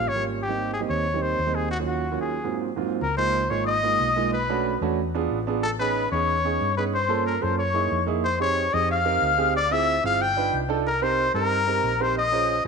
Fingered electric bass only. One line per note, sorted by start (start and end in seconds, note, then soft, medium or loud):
0.07 0.83 G#1 medium
0.89 1.35 D#2 medium
1.39 2.15 D#2 medium
3.02 3.47 C#2 medium
3.50 3.96 G#1 medium
4.00 4.76 B1 medium
4.81 5.27 E2 medium
5.31 6.07 A1 medium
6.12 6.57 E2 loud
6.61 7.37 G2 medium
7.43 7.88 F#2 medium
7.92 8.68 F2 medium
8.74 9.19 F2 medium
9.22 9.98 D2 medium
10.04 10.49 G1 medium
10.53 11.29 C2 medium
11.34 11.80 G2 medium
11.83 12.59 A#1 medium